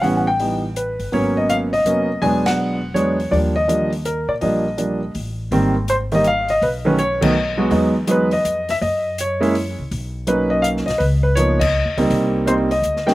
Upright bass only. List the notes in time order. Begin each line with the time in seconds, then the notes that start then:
0.03 A1
0.99 G1
1.13 G#1
1.84 F1
2.22 E1
2.95 E2
3.32 D#2
4.28 A#2
4.42 A#1
5.15 A1
5.51 G#1
6.62 B1
7.71 E2
8.45 F2
8.81 F#2
9.79 C2
9.91 B1
10.88 B1
11.00 C#2
11.85 D#2
11.97 C#2
12.10 C2
12.82 D2